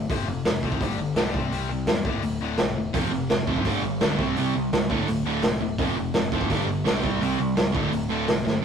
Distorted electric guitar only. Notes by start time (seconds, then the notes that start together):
0.10 F2 C3 F3
0.28 F2 C3
0.46 F2 C3
0.63 F2 C3 F3
0.81 G2 D3 G3
0.98 G2 D3
1.17 G2 D3 G3
1.35 C3 G3 C4
1.52 C3 G3 C4
1.71 C3 G3
1.88 C3 G3
2.05 D2 A2 D3
2.23 D2 A2
2.41 D2 A2 D3
2.59 D2 A2
2.76 D2 A2
2.93 F2 C3 F3
3.12 F2 C3
3.29 F2 C3
3.47 F2 C3 F3
3.66 G2 D3 G3
3.84 G2 D3
4.01 G2 D3 G3
4.19 C3 G3 C4
4.37 C3 G3 C4
4.55 C3 G3
4.73 C3 G3
4.89 D2 A2 D3
5.08 D2 A2
5.25 D2 A2 D3
5.43 D2 A2
5.62 D2 A2
5.79 F2 C3 F3
5.98 F2 C3
6.15 F2 C3
6.33 F2 C3 F3
6.50 G2 D3 G3
6.68 G2 D3
6.85 G2 D3 G3
7.04 C3 G3 C4
7.22 C3 G3 C4
7.39 C3 G3
7.57 C3 G3
7.74 D2 A2 D3
7.92 D2 A2
8.10 D2 A2 D3
8.27 D2 A2
8.45 D2 A2